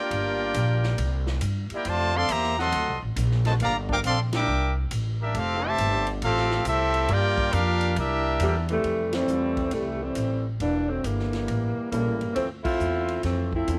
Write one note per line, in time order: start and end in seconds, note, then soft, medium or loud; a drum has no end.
0.00 1.28 A#3 medium
0.00 1.27 D4 loud
0.00 0.99 F4 medium
0.00 1.28 G4 medium
0.00 1.28 A#4 medium
0.00 1.28 D5 medium
0.00 1.28 G5 medium
0.11 0.53 G1 medium
0.11 kick soft
0.11 ride medium
0.54 0.97 A#1 loud
0.54 kick soft
0.54 hi-hat pedal medium
0.54 ride medium
0.83 snare medium
0.98 1.40 C2 loud
0.98 kick soft
0.98 ride medium
1.27 snare medium
1.41 1.68 G2 medium
1.41 kick soft
1.41 hi-hat pedal medium
1.41 ride medium
1.70 1.85 A#3 medium
1.70 1.85 E4 medium
1.70 1.85 G4 medium
1.70 muted upright bass stroke soft
1.70 ride medium
1.75 1.87 E4 medium
1.75 1.87 A#4 medium
1.75 1.87 D5 medium
1.75 1.87 G5 medium
1.85 2.28 F2 medium
1.85 2.15 C3 medium
1.85 2.14 D3 medium
1.85 2.14 A3 medium
1.85 2.15 F4 medium
1.85 2.15 C5 medium
1.85 2.15 D5 medium
1.85 2.15 A5 loud
1.85 kick soft
1.85 ride medium
2.15 2.30 D3 medium
2.15 2.30 A3 loud
2.15 2.30 C4 medium
2.15 2.30 A4 medium
2.15 2.30 D5 medium
2.15 2.31 F5 medium
2.15 2.30 C6 loud
2.29 2.72 E2 loud
2.29 2.59 A#3 medium
2.29 2.59 G4 medium
2.29 2.59 C5 medium
2.29 2.59 E5 medium
2.29 2.58 A#5 loud
2.29 kick soft
2.29 hi-hat pedal medium
2.29 ride medium
2.43 snare soft
2.58 2.99 F#3 medium
2.58 2.98 A3 medium
2.58 2.99 C4 medium
2.58 2.99 A4 medium
2.58 2.99 D#5 medium
2.58 3.00 F#5 medium
2.58 3.00 C6 loud
2.58 snare medium
2.72 2.88 D2 loud
2.72 kick soft
2.72 ride medium
2.88 3.02 C2 medium
3.03 3.16 A1 medium
3.16 3.59 A#1 loud
3.16 kick soft
3.16 hi-hat pedal medium
3.16 ride medium
3.31 snare soft
3.45 3.53 C3 medium
3.45 3.53 F#3 medium
3.45 3.53 A3 medium
3.45 3.54 F#4 medium
3.45 3.53 C5 medium
3.45 3.53 D#5 medium
3.45 3.53 A5 medium
3.45 snare medium
3.45 ride medium
3.60 4.02 G1 loud
3.60 3.74 D3 medium
3.60 3.74 F3 medium
3.60 3.74 A#3 medium
3.60 3.75 D5 medium
3.60 3.75 F5 medium
3.60 3.76 A#5 loud
3.60 kick soft
3.60 ride medium
3.64 3.76 G4 medium
3.89 3.96 F3 medium
3.89 3.96 A#3 medium
3.89 3.96 D4 loud
3.89 3.97 A#4 medium
3.89 3.98 F5 medium
3.89 3.98 G5 loud
3.89 3.98 D6 loud
3.89 kick medium
4.04 4.46 A#1 loud
4.04 4.18 C4 medium
4.04 4.19 A4 medium
4.04 4.19 D5 medium
4.04 4.19 F5 medium
4.04 4.19 C6 loud
4.04 kick soft
4.04 hi-hat pedal medium
4.04 ride medium
4.33 4.74 G3 medium
4.33 4.74 A#3 medium
4.33 4.74 D4 medium
4.33 4.75 A#4 medium
4.33 4.75 E5 medium
4.33 4.75 G5 medium
4.33 4.75 D6 loud
4.33 snare loud
4.33 ride medium
4.48 4.90 C2 loud
4.91 5.34 A1 loud
4.91 kick soft
4.91 hi-hat pedal medium
4.91 ride medium
5.22 5.35 G3 medium
5.22 5.35 A#3 medium
5.22 5.35 D4 medium
5.22 5.35 E4 medium
5.22 5.35 G4 medium
5.22 5.35 A#4 medium
5.22 5.35 E5 medium
5.35 5.77 F1 loud
5.35 5.65 A3 medium
5.35 5.64 C4 medium
5.35 5.65 C4 medium
5.35 5.64 F4 medium
5.35 5.64 G4 medium
5.35 5.64 A4 medium
5.35 5.65 F5 loud
5.35 kick soft
5.35 ride medium
5.65 6.08 C3 loud
5.65 6.08 E3 loud
5.65 6.08 A3 loud
5.65 6.09 G4 loud
5.65 6.09 C5 loud
5.65 6.09 E5 medium
5.65 6.09 A5 loud
5.78 6.21 G1 loud
5.78 kick soft
5.78 hi-hat pedal medium
5.78 ride medium
6.07 ride medium
6.22 6.65 A1 loud
6.22 6.63 A3 medium
6.22 6.63 C4 medium
6.22 6.64 C4 loud
6.22 6.63 F4 medium
6.22 6.64 G4 medium
6.22 6.64 A4 loud
6.22 6.64 F5 loud
6.22 kick soft
6.22 ride medium
6.37 snare soft
6.51 snare medium
6.65 7.08 C2 loud
6.65 7.09 A3 medium
6.65 7.09 C4 medium
6.65 7.10 C4 medium
6.65 7.09 E4 medium
6.65 7.11 G4 medium
6.65 7.11 A4 medium
6.65 7.11 E5 loud
6.65 kick soft
6.65 hi-hat pedal medium
6.65 ride medium
6.94 ride medium
7.08 7.52 G2 medium
7.08 7.52 A#3 loud
7.08 7.53 D4 loud
7.08 7.54 F4 loud
7.08 7.54 G4 loud
7.08 7.52 A#4 loud
7.08 7.54 D5 loud
7.08 7.54 G5 loud
7.08 kick soft
7.08 ride medium
7.38 kick medium
7.53 7.96 F2 loud
7.53 7.96 A#3 medium
7.53 7.97 D4 medium
7.53 7.97 F4 medium
7.53 7.97 G4 medium
7.53 7.97 A#4 medium
7.53 7.97 F5 loud
7.53 kick soft
7.53 hi-hat pedal medium
7.53 ride medium
7.81 ride medium
7.96 8.39 C2 loud
7.96 8.66 G3 medium
7.96 8.66 A#3 medium
7.96 8.66 D4 medium
7.96 8.66 E4 medium
7.96 8.66 G4 medium
7.96 8.66 A#4 medium
7.96 8.67 E5 medium
7.96 kick soft
7.96 ride medium
8.40 8.83 E2 loud
8.40 8.55 A#2 medium
8.40 8.55 D3 medium
8.40 8.55 E3 medium
8.40 8.55 G3 medium
8.40 kick soft
8.40 hi-hat pedal medium
8.40 ride medium
8.69 9.11 C3 medium
8.69 9.11 E3 medium
8.69 9.11 G3 medium
8.69 9.11 A3 loud
8.69 ride medium
8.84 9.27 F2 medium
8.84 kick soft
8.84 ride medium
9.13 9.71 E3 loud
9.13 9.71 G3 medium
9.13 9.71 A3 loud
9.13 9.72 C4 loud
9.13 snare medium
9.13 ride medium
9.28 9.71 E2 medium
9.28 9.55 G3 medium
9.28 9.55 A3 medium
9.28 9.55 C4 medium
9.28 9.55 E4 medium
9.28 9.55 F4 medium
9.28 hi-hat pedal medium
9.57 kick medium
9.57 ride soft
9.71 10.15 C2 medium
9.71 10.01 C3 medium
9.71 10.01 E3 medium
9.71 10.00 G3 medium
9.71 10.01 A3 medium
9.71 kick soft
9.71 ride medium
10.02 10.46 E3 medium
10.02 10.45 G3 medium
10.02 10.46 A3 medium
10.02 10.46 C4 medium
10.15 10.59 A1 medium
10.15 kick soft
10.15 hi-hat pedal medium
10.15 ride medium
10.60 11.03 E1 medium
10.60 10.87 E3 medium
10.60 10.87 G3 medium
10.60 10.87 A#3 medium
10.60 10.87 D4 medium
10.60 kick soft
10.60 ride medium
10.89 11.03 D3 medium
10.89 11.04 F#3 medium
10.89 11.04 A3 medium
10.89 11.04 C4 medium
11.04 11.47 G1 medium
11.04 11.48 D3 medium
11.04 11.90 E3 medium
11.04 11.90 G3 medium
11.04 11.90 A#3 medium
11.04 kick soft
11.04 hi-hat pedal medium
11.04 ride medium
11.19 snare soft
11.33 snare soft
11.33 ride soft
11.48 11.75 A1 medium
11.48 kick soft
11.48 ride medium
11.91 12.07 A#1 medium
11.91 12.32 C#3 medium
11.91 12.33 E3 medium
11.91 12.32 G3 medium
11.91 12.18 G3 medium
11.91 12.32 A#3 medium
11.91 12.18 A#3 medium
11.91 12.18 C#4 medium
11.91 12.18 E4 medium
11.91 12.19 A4 medium
11.91 kick soft
11.91 hi-hat pedal medium
11.91 ride medium
12.07 12.21 A1 medium
12.21 12.35 G1 medium
12.21 ride soft
12.35 12.78 D2 medium
12.35 12.48 E3 medium
12.35 12.48 F3 medium
12.35 12.48 A3 medium
12.35 12.48 C4 loud
12.35 kick soft
12.35 ride medium
12.64 13.19 A3 medium
12.64 13.19 C4 medium
12.64 13.19 E4 loud
12.64 13.20 F4 loud
12.64 kick medium
12.64 crash medium
12.79 13.22 E2 medium
12.79 hi-hat pedal medium
13.08 ride soft
13.23 13.66 F2 medium
13.23 13.53 E3 medium
13.23 13.53 F3 medium
13.23 13.53 A3 medium
13.23 13.53 C4 loud
13.23 kick soft
13.23 snare soft
13.23 ride medium
13.53 13.79 F3 medium
13.53 13.79 A3 medium
13.53 13.79 C4 medium
13.53 13.79 E4 medium
13.53 kick medium
13.68 13.79 E2 loud
13.68 13.79 F3 medium
13.68 13.79 C4 soft
13.68 13.79 D4 soft
13.68 13.79 E4 soft
13.68 13.79 A4 medium
13.68 kick soft
13.68 hi-hat pedal medium
13.68 ride medium